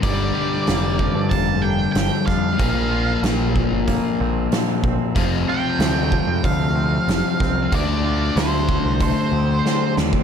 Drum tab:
HH |o---o---o---o---|o---o---o---o---|o---o---o---o---|o---o---o-------|
SD |----o-------o-o-|----o-------o---|----o-------o-o-|----o-------o-o-|
BD |o-----o-o-----o-|o-----o-o-----o-|o-----o-o-----o-|o-----o-o------o|